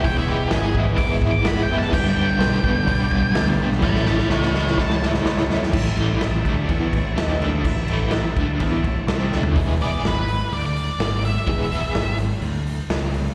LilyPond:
<<
  \new Staff \with { instrumentName = "Lead electric guitar" } { \time 4/4 \key a \major \tempo 4 = 126 g''16 e''16 g'8 gis'8 r8 \tuplet 3/2 { d'''8 r8 d'''8 b''8 g''8 a''8 } | \tuplet 3/2 { g''8 g''4~ } g''2~ g''16 r8. | <g'' b''>8 <g'' b''>8 <cis'' a''>8 <cis'' a''>8 a''8 r4. | r1 |
r1 | r8 d''8 b'4 d''16 d''4~ d''16 e''8~ | e''4. r2 r8 | }
  \new Staff \with { instrumentName = "Transistor combo organ" } { \time 4/4 \key a \major <e' gis' cis''>4 <e' gis' b'>4 <e' gis' cis''>4 <e' gis' b'>4 | <d' g' b'>4 <d' g' b'>4 <d' g' d''>4 <d' g' a'>4 | <e' a' cis''>4 <e' a' cis''>4 <e' a' cis''>4 <e' a' cis''>4 | <e' a' e''>4 <e' a' e''>4 <e' a' cis''>4 <e' a' e''>4 |
<e' a' e''>4 <e' a' e''>4 <e' a' e''>4 <e' a' e''>4 | r1 | r1 | }
  \new Staff \with { instrumentName = "Overdriven electric guitar" } { \clef bass \time 4/4 \key a \major <e gis b e'>8 <e gis b e'>8 <e gis b e'>8 <e gis b e'>8 <e gis b e'>8 <e gis b e'>8 <e gis b e'>8 <e gis b e'>8 | <g, d g b d'>8 <g, d g b d'>8 <g, d g b d'>8 <g, d g b d'>8 <g, d g b d'>8 <g, d g b d'>8 <g, d g b d'>8 <g, d g b d'>8 | <a, e a cis' e'>8 <a, e a cis' e'>8 <a, e a cis' e'>8 <a, e a cis' e'>8 <a, e a cis' e'>8 <a, e a cis' e'>8 <a, e a cis' e'>8 <a, e a cis' e'>8 | <a, e>8 <a, e a>8 <a, e>8 <d a d'>8 <e b e'>8 <a, e>8 <dis ais dis'>8 <d a d'>8 |
<a, e>8 <a, e a>8 <a, e>8 <d a d'>8 <e b e'>8 <a, e>8 <c g c'>8 <d a d'>8 | <e gis b e' gis'>8 <e gis b e' gis'>8 r2. | <e gis b e' gis'>8 <e gis b e' gis'>8 r2. | }
  \new Staff \with { instrumentName = "Picked electric bass" } { \clef bass \time 4/4 \key a \major e,,4 gis,,4 gis,,4 gis,,8 fis,,8 | g,,4 b,,8 g,,8 b,,4 d,8 b,,8 | a,,4 cis,4 cis,4 cis,8 e,8 | a,,8 a,,8 a,,8 d,8 e,8 a,,8 dis,8 d,8 |
a,,8 a,,8 a,,8 d,8 e,8 a,,8 c,8 d,8 | e,,4 gis,,4 d,4 gis,,4 | e,,4 gis,,4 d,4 cis,4 | }
  \new DrumStaff \with { instrumentName = "Drums" } \drummode { \time 4/4 <hho bd>4 <hho sn>8 bd8 <hho bd>8 bd8 <hho sn>8. sn16 | <cymc bd>4 <hho sn>8 bd8 <hho bd>8 bd8 <hho sn>8. sn16 | <bd sn>16 sn16 sn16 sn16 sn16 sn16 sn16 sn16 <bd sn>16 sn16 sn16 sn16 sn16 sn16 sn16 sn16 | <cymc bd>8 cymc8 <cymc sn>8 <cymc bd>8 <cymc bd>8 <cymc bd>8 <cymc sn>8 cymc8 |
<cymc bd>8 cymc8 <cymc sn>8 <cymc bd>8 <cymc bd>8 <cymc bd>8 <cymc sn>8 sn16 tomfh16 | <hho bd>8 hho8 <hho sn>8 hho8 hho8 hho8 <hho sn>8 hho8 | <hho bd>8 hho8 <hho sn>8 hho8 hho8 hho8 <hho sn>8 hho8 | }
>>